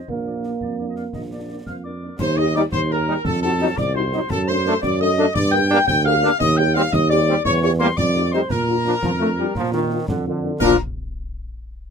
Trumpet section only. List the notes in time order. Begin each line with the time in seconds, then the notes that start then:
0.27 D5
0.44 D5
0.78 D5
0.96 D5
1.31 D5
1.50 D5
1.67 F5
1.85 D5
2.03 D5
2.20 C5
2.38 D#5
2.55 D5
2.72 C5
2.90 A#4
3.24 A4
3.42 A4
3.77 D5
3.95 C5
4.31 A4
4.48 C5
4.84 D5
5.01 D#5
5.36 D5
5.53 G5
5.88 G5
6.06 F5
6.40 D#5
6.58 G5
6.74 F5
6.93 D#5
7.10 D5
7.45 C#5
7.64 C#5
7.81 C5
7.97 D5
8.34 C5
8.50 A#4
10.60 A#4